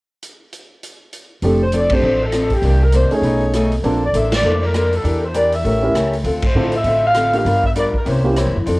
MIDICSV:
0, 0, Header, 1, 7, 480
1, 0, Start_track
1, 0, Key_signature, -1, "major"
1, 0, Tempo, 301508
1, 352, Time_signature, 4, 2, 24, 8
1, 14005, End_track
2, 0, Start_track
2, 0, Title_t, "Saxophone section"
2, 0, Program_c, 0, 65
2, 2601, Note_on_c, 0, 72, 78
2, 2760, Note_off_c, 0, 72, 0
2, 2814, Note_on_c, 0, 74, 85
2, 3068, Note_on_c, 0, 72, 82
2, 3069, Note_off_c, 0, 74, 0
2, 3532, Note_off_c, 0, 72, 0
2, 3554, Note_on_c, 0, 69, 86
2, 4015, Note_off_c, 0, 69, 0
2, 4026, Note_on_c, 0, 67, 75
2, 4491, Note_off_c, 0, 67, 0
2, 4499, Note_on_c, 0, 70, 78
2, 4680, Note_off_c, 0, 70, 0
2, 4710, Note_on_c, 0, 72, 74
2, 4958, Note_off_c, 0, 72, 0
2, 4984, Note_on_c, 0, 73, 75
2, 5930, Note_off_c, 0, 73, 0
2, 6458, Note_on_c, 0, 74, 83
2, 6608, Note_off_c, 0, 74, 0
2, 6636, Note_on_c, 0, 76, 81
2, 6899, Note_off_c, 0, 76, 0
2, 6926, Note_on_c, 0, 74, 87
2, 7349, Note_off_c, 0, 74, 0
2, 7381, Note_on_c, 0, 70, 84
2, 7848, Note_off_c, 0, 70, 0
2, 7888, Note_on_c, 0, 69, 74
2, 8342, Note_off_c, 0, 69, 0
2, 8348, Note_on_c, 0, 72, 65
2, 8525, Note_off_c, 0, 72, 0
2, 8543, Note_on_c, 0, 74, 83
2, 8794, Note_off_c, 0, 74, 0
2, 8824, Note_on_c, 0, 76, 85
2, 9770, Note_off_c, 0, 76, 0
2, 10288, Note_on_c, 0, 72, 76
2, 10710, Note_off_c, 0, 72, 0
2, 10769, Note_on_c, 0, 76, 90
2, 11222, Note_off_c, 0, 76, 0
2, 11252, Note_on_c, 0, 77, 99
2, 11672, Note_off_c, 0, 77, 0
2, 11723, Note_on_c, 0, 77, 83
2, 12148, Note_off_c, 0, 77, 0
2, 12188, Note_on_c, 0, 76, 77
2, 12268, Note_off_c, 0, 76, 0
2, 12392, Note_on_c, 0, 74, 78
2, 12512, Note_off_c, 0, 74, 0
2, 12685, Note_on_c, 0, 70, 67
2, 12842, Note_off_c, 0, 70, 0
2, 12872, Note_on_c, 0, 72, 73
2, 13619, Note_off_c, 0, 72, 0
2, 14005, End_track
3, 0, Start_track
3, 0, Title_t, "Grand piano"
3, 0, Program_c, 1, 0
3, 2279, Note_on_c, 1, 57, 49
3, 2285, Note_on_c, 1, 60, 44
3, 2296, Note_on_c, 1, 62, 44
3, 2303, Note_on_c, 1, 67, 55
3, 2533, Note_off_c, 1, 57, 0
3, 2536, Note_off_c, 1, 60, 0
3, 2542, Note_off_c, 1, 62, 0
3, 2545, Note_off_c, 1, 67, 0
3, 3057, Note_on_c, 1, 57, 45
3, 3060, Note_on_c, 1, 60, 40
3, 3068, Note_on_c, 1, 62, 40
3, 3078, Note_on_c, 1, 67, 45
3, 3221, Note_off_c, 1, 57, 0
3, 3222, Note_off_c, 1, 60, 0
3, 3226, Note_off_c, 1, 62, 0
3, 3231, Note_off_c, 1, 67, 0
3, 4954, Note_on_c, 1, 57, 53
3, 4957, Note_on_c, 1, 61, 52
3, 4967, Note_on_c, 1, 63, 48
3, 4977, Note_on_c, 1, 68, 57
3, 5589, Note_off_c, 1, 57, 0
3, 5590, Note_off_c, 1, 61, 0
3, 5596, Note_off_c, 1, 63, 0
3, 5600, Note_off_c, 1, 68, 0
3, 6112, Note_on_c, 1, 60, 50
3, 6116, Note_on_c, 1, 62, 44
3, 6129, Note_on_c, 1, 65, 49
3, 6133, Note_on_c, 1, 69, 57
3, 6368, Note_off_c, 1, 60, 0
3, 6371, Note_off_c, 1, 62, 0
3, 6377, Note_off_c, 1, 65, 0
3, 6379, Note_off_c, 1, 69, 0
3, 9270, Note_on_c, 1, 61, 52
3, 9281, Note_on_c, 1, 64, 50
3, 9294, Note_on_c, 1, 67, 44
3, 9296, Note_on_c, 1, 70, 59
3, 9446, Note_off_c, 1, 61, 0
3, 9452, Note_off_c, 1, 64, 0
3, 9458, Note_off_c, 1, 67, 0
3, 9459, Note_off_c, 1, 70, 0
3, 10434, Note_on_c, 1, 60, 46
3, 10438, Note_on_c, 1, 64, 44
3, 10449, Note_on_c, 1, 69, 51
3, 10453, Note_on_c, 1, 65, 44
3, 10690, Note_off_c, 1, 60, 0
3, 10692, Note_off_c, 1, 64, 0
3, 10697, Note_off_c, 1, 69, 0
3, 10699, Note_off_c, 1, 65, 0
3, 11678, Note_on_c, 1, 58, 47
3, 11681, Note_on_c, 1, 62, 47
3, 11687, Note_on_c, 1, 65, 43
3, 11703, Note_on_c, 1, 67, 51
3, 11850, Note_off_c, 1, 58, 0
3, 11852, Note_off_c, 1, 62, 0
3, 11855, Note_off_c, 1, 65, 0
3, 11863, Note_off_c, 1, 67, 0
3, 13114, Note_on_c, 1, 58, 54
3, 13124, Note_on_c, 1, 61, 50
3, 13132, Note_on_c, 1, 64, 46
3, 13137, Note_on_c, 1, 67, 62
3, 13289, Note_off_c, 1, 58, 0
3, 13294, Note_off_c, 1, 61, 0
3, 13298, Note_off_c, 1, 64, 0
3, 13301, Note_off_c, 1, 67, 0
3, 14005, End_track
4, 0, Start_track
4, 0, Title_t, "Steel-string acoustic guitar"
4, 0, Program_c, 2, 25
4, 2284, Note_on_c, 2, 53, 43
4, 2299, Note_on_c, 2, 60, 40
4, 2299, Note_on_c, 2, 62, 40
4, 2314, Note_on_c, 2, 69, 41
4, 2584, Note_off_c, 2, 53, 0
4, 2591, Note_off_c, 2, 60, 0
4, 2591, Note_off_c, 2, 62, 0
4, 2599, Note_off_c, 2, 69, 0
4, 2764, Note_on_c, 2, 53, 44
4, 2766, Note_on_c, 2, 60, 50
4, 2775, Note_on_c, 2, 62, 55
4, 2782, Note_on_c, 2, 69, 50
4, 3063, Note_off_c, 2, 53, 0
4, 3065, Note_off_c, 2, 60, 0
4, 3069, Note_off_c, 2, 62, 0
4, 3073, Note_off_c, 2, 69, 0
4, 3232, Note_on_c, 2, 53, 43
4, 3245, Note_on_c, 2, 60, 46
4, 3254, Note_on_c, 2, 62, 43
4, 3262, Note_on_c, 2, 69, 49
4, 3538, Note_off_c, 2, 53, 0
4, 3544, Note_off_c, 2, 60, 0
4, 3549, Note_off_c, 2, 62, 0
4, 3552, Note_off_c, 2, 69, 0
4, 3710, Note_on_c, 2, 53, 54
4, 3724, Note_on_c, 2, 60, 55
4, 3729, Note_on_c, 2, 62, 54
4, 3734, Note_on_c, 2, 69, 50
4, 4016, Note_off_c, 2, 53, 0
4, 4023, Note_off_c, 2, 60, 0
4, 4026, Note_off_c, 2, 62, 0
4, 4028, Note_off_c, 2, 69, 0
4, 4187, Note_on_c, 2, 48, 39
4, 4193, Note_on_c, 2, 51, 36
4, 4210, Note_on_c, 2, 58, 42
4, 4213, Note_on_c, 2, 62, 44
4, 4495, Note_off_c, 2, 48, 0
4, 4497, Note_off_c, 2, 51, 0
4, 4506, Note_off_c, 2, 58, 0
4, 4508, Note_off_c, 2, 62, 0
4, 4673, Note_on_c, 2, 48, 48
4, 4682, Note_on_c, 2, 51, 50
4, 4688, Note_on_c, 2, 58, 50
4, 4695, Note_on_c, 2, 62, 56
4, 4977, Note_off_c, 2, 48, 0
4, 4982, Note_off_c, 2, 51, 0
4, 4985, Note_off_c, 2, 58, 0
4, 4989, Note_off_c, 2, 62, 0
4, 5153, Note_on_c, 2, 47, 43
4, 5159, Note_on_c, 2, 57, 42
4, 5169, Note_on_c, 2, 63, 47
4, 5185, Note_on_c, 2, 68, 50
4, 5457, Note_off_c, 2, 47, 0
4, 5460, Note_off_c, 2, 57, 0
4, 5465, Note_off_c, 2, 63, 0
4, 5474, Note_off_c, 2, 68, 0
4, 5645, Note_on_c, 2, 47, 60
4, 5653, Note_on_c, 2, 57, 62
4, 5655, Note_on_c, 2, 63, 62
4, 5662, Note_on_c, 2, 68, 64
4, 5943, Note_off_c, 2, 47, 0
4, 5947, Note_off_c, 2, 57, 0
4, 5948, Note_off_c, 2, 63, 0
4, 5952, Note_off_c, 2, 68, 0
4, 6109, Note_on_c, 2, 58, 46
4, 6129, Note_on_c, 2, 62, 48
4, 6131, Note_on_c, 2, 69, 46
4, 6144, Note_on_c, 2, 72, 45
4, 6415, Note_off_c, 2, 58, 0
4, 6425, Note_off_c, 2, 62, 0
4, 6426, Note_off_c, 2, 69, 0
4, 6433, Note_off_c, 2, 72, 0
4, 6587, Note_on_c, 2, 58, 44
4, 6602, Note_on_c, 2, 62, 45
4, 6604, Note_on_c, 2, 69, 51
4, 6610, Note_on_c, 2, 72, 54
4, 6894, Note_off_c, 2, 58, 0
4, 6901, Note_off_c, 2, 62, 0
4, 6903, Note_off_c, 2, 69, 0
4, 6906, Note_off_c, 2, 72, 0
4, 7066, Note_on_c, 2, 58, 44
4, 7080, Note_on_c, 2, 62, 44
4, 7091, Note_on_c, 2, 69, 48
4, 7102, Note_on_c, 2, 72, 49
4, 7373, Note_off_c, 2, 58, 0
4, 7381, Note_off_c, 2, 62, 0
4, 7386, Note_off_c, 2, 69, 0
4, 7391, Note_off_c, 2, 72, 0
4, 7549, Note_on_c, 2, 58, 46
4, 7555, Note_on_c, 2, 62, 54
4, 7570, Note_on_c, 2, 69, 59
4, 7574, Note_on_c, 2, 72, 56
4, 7855, Note_off_c, 2, 58, 0
4, 7858, Note_off_c, 2, 62, 0
4, 7865, Note_off_c, 2, 69, 0
4, 7867, Note_off_c, 2, 72, 0
4, 8015, Note_on_c, 2, 52, 40
4, 8023, Note_on_c, 2, 62, 41
4, 8036, Note_on_c, 2, 67, 40
4, 8046, Note_on_c, 2, 70, 42
4, 8328, Note_off_c, 2, 52, 0
4, 8332, Note_off_c, 2, 62, 0
4, 8339, Note_off_c, 2, 67, 0
4, 8344, Note_off_c, 2, 70, 0
4, 8500, Note_on_c, 2, 52, 42
4, 8511, Note_on_c, 2, 62, 52
4, 8520, Note_on_c, 2, 67, 49
4, 8527, Note_on_c, 2, 70, 56
4, 8810, Note_off_c, 2, 52, 0
4, 8816, Note_off_c, 2, 62, 0
4, 8820, Note_off_c, 2, 67, 0
4, 8824, Note_off_c, 2, 70, 0
4, 8983, Note_on_c, 2, 57, 46
4, 8995, Note_on_c, 2, 61, 44
4, 9003, Note_on_c, 2, 67, 43
4, 9012, Note_on_c, 2, 70, 49
4, 9292, Note_off_c, 2, 57, 0
4, 9298, Note_off_c, 2, 61, 0
4, 9302, Note_off_c, 2, 67, 0
4, 9306, Note_off_c, 2, 70, 0
4, 9462, Note_on_c, 2, 57, 53
4, 9475, Note_on_c, 2, 61, 56
4, 9480, Note_on_c, 2, 67, 58
4, 9489, Note_on_c, 2, 70, 63
4, 9771, Note_off_c, 2, 57, 0
4, 9778, Note_off_c, 2, 61, 0
4, 9780, Note_off_c, 2, 67, 0
4, 9785, Note_off_c, 2, 70, 0
4, 9934, Note_on_c, 2, 50, 39
4, 9951, Note_on_c, 2, 60, 45
4, 9959, Note_on_c, 2, 65, 43
4, 9970, Note_on_c, 2, 69, 47
4, 10248, Note_off_c, 2, 50, 0
4, 10256, Note_off_c, 2, 60, 0
4, 10260, Note_off_c, 2, 65, 0
4, 10266, Note_off_c, 2, 69, 0
4, 10437, Note_on_c, 2, 50, 52
4, 10447, Note_on_c, 2, 60, 45
4, 10451, Note_on_c, 2, 65, 55
4, 10462, Note_on_c, 2, 69, 50
4, 10739, Note_off_c, 2, 50, 0
4, 10744, Note_off_c, 2, 60, 0
4, 10746, Note_off_c, 2, 65, 0
4, 10752, Note_off_c, 2, 69, 0
4, 10921, Note_on_c, 2, 50, 44
4, 10935, Note_on_c, 2, 60, 43
4, 10948, Note_on_c, 2, 65, 45
4, 10955, Note_on_c, 2, 69, 46
4, 11222, Note_off_c, 2, 50, 0
4, 11228, Note_off_c, 2, 60, 0
4, 11235, Note_off_c, 2, 65, 0
4, 11238, Note_off_c, 2, 69, 0
4, 11393, Note_on_c, 2, 50, 49
4, 11402, Note_on_c, 2, 60, 51
4, 11406, Note_on_c, 2, 65, 51
4, 11415, Note_on_c, 2, 69, 55
4, 11698, Note_off_c, 2, 50, 0
4, 11702, Note_off_c, 2, 60, 0
4, 11704, Note_off_c, 2, 65, 0
4, 11708, Note_off_c, 2, 69, 0
4, 11876, Note_on_c, 2, 55, 41
4, 11888, Note_on_c, 2, 62, 36
4, 11893, Note_on_c, 2, 65, 40
4, 11901, Note_on_c, 2, 70, 42
4, 12179, Note_off_c, 2, 55, 0
4, 12185, Note_off_c, 2, 62, 0
4, 12188, Note_off_c, 2, 65, 0
4, 12192, Note_off_c, 2, 70, 0
4, 12348, Note_on_c, 2, 55, 49
4, 12357, Note_on_c, 2, 62, 55
4, 12359, Note_on_c, 2, 65, 45
4, 12374, Note_on_c, 2, 70, 58
4, 12656, Note_off_c, 2, 55, 0
4, 12660, Note_off_c, 2, 62, 0
4, 12661, Note_off_c, 2, 65, 0
4, 12668, Note_off_c, 2, 70, 0
4, 12820, Note_on_c, 2, 48, 47
4, 12832, Note_on_c, 2, 58, 44
4, 12843, Note_on_c, 2, 61, 44
4, 12849, Note_on_c, 2, 64, 48
4, 13131, Note_off_c, 2, 48, 0
4, 13138, Note_off_c, 2, 58, 0
4, 13143, Note_off_c, 2, 61, 0
4, 13146, Note_off_c, 2, 64, 0
4, 13315, Note_on_c, 2, 48, 47
4, 13325, Note_on_c, 2, 58, 54
4, 13334, Note_on_c, 2, 61, 54
4, 13337, Note_on_c, 2, 64, 59
4, 13620, Note_off_c, 2, 48, 0
4, 13624, Note_off_c, 2, 58, 0
4, 13629, Note_off_c, 2, 61, 0
4, 13631, Note_off_c, 2, 64, 0
4, 13781, Note_on_c, 2, 53, 48
4, 13793, Note_on_c, 2, 60, 48
4, 13802, Note_on_c, 2, 62, 45
4, 13818, Note_on_c, 2, 69, 47
4, 14005, Note_off_c, 2, 53, 0
4, 14005, Note_off_c, 2, 60, 0
4, 14005, Note_off_c, 2, 62, 0
4, 14005, Note_off_c, 2, 69, 0
4, 14005, End_track
5, 0, Start_track
5, 0, Title_t, "Upright bass"
5, 0, Program_c, 3, 32
5, 2266, Note_on_c, 3, 29, 74
5, 3180, Note_off_c, 3, 29, 0
5, 3216, Note_on_c, 3, 33, 67
5, 4134, Note_off_c, 3, 33, 0
5, 4171, Note_on_c, 3, 36, 81
5, 4893, Note_off_c, 3, 36, 0
5, 5122, Note_on_c, 3, 35, 74
5, 6046, Note_off_c, 3, 35, 0
5, 6108, Note_on_c, 3, 34, 81
5, 6554, Note_off_c, 3, 34, 0
5, 6581, Note_on_c, 3, 33, 69
5, 7030, Note_off_c, 3, 33, 0
5, 7055, Note_on_c, 3, 41, 69
5, 7973, Note_off_c, 3, 41, 0
5, 8020, Note_on_c, 3, 40, 74
5, 8935, Note_off_c, 3, 40, 0
5, 8991, Note_on_c, 3, 33, 71
5, 9436, Note_off_c, 3, 33, 0
5, 9465, Note_on_c, 3, 37, 65
5, 9913, Note_off_c, 3, 37, 0
5, 9935, Note_on_c, 3, 38, 76
5, 10387, Note_off_c, 3, 38, 0
5, 10419, Note_on_c, 3, 45, 68
5, 10870, Note_off_c, 3, 45, 0
5, 10889, Note_on_c, 3, 33, 73
5, 11811, Note_off_c, 3, 33, 0
5, 11862, Note_on_c, 3, 31, 76
5, 12579, Note_off_c, 3, 31, 0
5, 12839, Note_on_c, 3, 36, 70
5, 13430, Note_off_c, 3, 36, 0
5, 13477, Note_on_c, 3, 40, 61
5, 13618, Note_off_c, 3, 40, 0
5, 13627, Note_on_c, 3, 42, 61
5, 13778, Note_off_c, 3, 42, 0
5, 13802, Note_on_c, 3, 41, 74
5, 14005, Note_off_c, 3, 41, 0
5, 14005, End_track
6, 0, Start_track
6, 0, Title_t, "Muted upright bass strokes"
6, 4940, Note_on_c, 9, 29, 33
6, 5099, Note_off_c, 9, 29, 0
6, 12638, Note_on_c, 9, 29, 33
6, 12797, Note_off_c, 9, 29, 0
6, 14005, End_track
7, 0, Start_track
7, 0, Title_t, "Drums"
7, 352, Note_on_c, 9, 42, 52
7, 512, Note_off_c, 9, 42, 0
7, 834, Note_on_c, 9, 42, 44
7, 993, Note_off_c, 9, 42, 0
7, 1319, Note_on_c, 9, 42, 47
7, 1478, Note_off_c, 9, 42, 0
7, 1792, Note_on_c, 9, 42, 47
7, 1951, Note_off_c, 9, 42, 0
7, 2263, Note_on_c, 9, 46, 39
7, 2422, Note_off_c, 9, 46, 0
7, 2739, Note_on_c, 9, 42, 45
7, 2898, Note_off_c, 9, 42, 0
7, 3019, Note_on_c, 9, 51, 68
7, 3033, Note_on_c, 9, 36, 74
7, 3178, Note_off_c, 9, 51, 0
7, 3192, Note_off_c, 9, 36, 0
7, 3696, Note_on_c, 9, 42, 47
7, 3701, Note_on_c, 9, 37, 57
7, 3855, Note_off_c, 9, 42, 0
7, 3860, Note_off_c, 9, 37, 0
7, 3981, Note_on_c, 9, 46, 35
7, 3988, Note_on_c, 9, 36, 46
7, 4140, Note_off_c, 9, 46, 0
7, 4147, Note_off_c, 9, 36, 0
7, 4181, Note_on_c, 9, 46, 38
7, 4341, Note_off_c, 9, 46, 0
7, 4654, Note_on_c, 9, 42, 45
7, 4813, Note_off_c, 9, 42, 0
7, 4951, Note_on_c, 9, 46, 33
7, 5110, Note_off_c, 9, 46, 0
7, 5145, Note_on_c, 9, 46, 38
7, 5304, Note_off_c, 9, 46, 0
7, 5627, Note_on_c, 9, 42, 48
7, 5631, Note_on_c, 9, 37, 50
7, 5786, Note_off_c, 9, 42, 0
7, 5791, Note_off_c, 9, 37, 0
7, 5918, Note_on_c, 9, 46, 34
7, 6078, Note_off_c, 9, 46, 0
7, 6112, Note_on_c, 9, 46, 38
7, 6271, Note_off_c, 9, 46, 0
7, 6587, Note_on_c, 9, 42, 46
7, 6746, Note_off_c, 9, 42, 0
7, 6875, Note_on_c, 9, 51, 65
7, 6880, Note_on_c, 9, 38, 68
7, 7034, Note_off_c, 9, 51, 0
7, 7039, Note_off_c, 9, 38, 0
7, 7547, Note_on_c, 9, 42, 46
7, 7551, Note_on_c, 9, 37, 52
7, 7706, Note_off_c, 9, 42, 0
7, 7711, Note_off_c, 9, 37, 0
7, 7842, Note_on_c, 9, 46, 34
7, 8001, Note_off_c, 9, 46, 0
7, 8035, Note_on_c, 9, 46, 37
7, 8194, Note_off_c, 9, 46, 0
7, 8505, Note_on_c, 9, 42, 43
7, 8664, Note_off_c, 9, 42, 0
7, 8791, Note_on_c, 9, 46, 37
7, 8950, Note_off_c, 9, 46, 0
7, 8994, Note_on_c, 9, 46, 37
7, 9153, Note_off_c, 9, 46, 0
7, 9473, Note_on_c, 9, 42, 46
7, 9478, Note_on_c, 9, 37, 53
7, 9633, Note_off_c, 9, 42, 0
7, 9637, Note_off_c, 9, 37, 0
7, 9763, Note_on_c, 9, 46, 33
7, 9922, Note_off_c, 9, 46, 0
7, 9939, Note_on_c, 9, 46, 39
7, 10098, Note_off_c, 9, 46, 0
7, 10224, Note_on_c, 9, 51, 64
7, 10231, Note_on_c, 9, 36, 70
7, 10383, Note_off_c, 9, 51, 0
7, 10390, Note_off_c, 9, 36, 0
7, 10695, Note_on_c, 9, 46, 34
7, 10854, Note_off_c, 9, 46, 0
7, 10891, Note_on_c, 9, 46, 38
7, 11050, Note_off_c, 9, 46, 0
7, 11375, Note_on_c, 9, 42, 50
7, 11380, Note_on_c, 9, 37, 53
7, 11534, Note_off_c, 9, 42, 0
7, 11539, Note_off_c, 9, 37, 0
7, 11673, Note_on_c, 9, 46, 33
7, 11832, Note_off_c, 9, 46, 0
7, 11876, Note_on_c, 9, 46, 42
7, 12036, Note_off_c, 9, 46, 0
7, 12157, Note_on_c, 9, 36, 50
7, 12316, Note_off_c, 9, 36, 0
7, 12346, Note_on_c, 9, 42, 45
7, 12505, Note_off_c, 9, 42, 0
7, 12637, Note_on_c, 9, 36, 42
7, 12796, Note_off_c, 9, 36, 0
7, 12829, Note_on_c, 9, 46, 40
7, 12988, Note_off_c, 9, 46, 0
7, 13312, Note_on_c, 9, 42, 49
7, 13316, Note_on_c, 9, 37, 53
7, 13471, Note_off_c, 9, 42, 0
7, 13476, Note_off_c, 9, 37, 0
7, 13791, Note_on_c, 9, 46, 41
7, 13951, Note_off_c, 9, 46, 0
7, 14005, End_track
0, 0, End_of_file